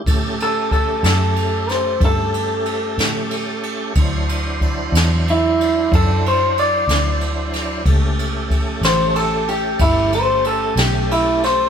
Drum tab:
RD |xxxxxxxxxxxx|xxxxxxxxxxxx|xxxxxxxxxxxx|
SD |---o-o---o--|---o-----o-o|---o-----o-o|
BD |o-o---o-----|o-o---o-----|o-o---o-----|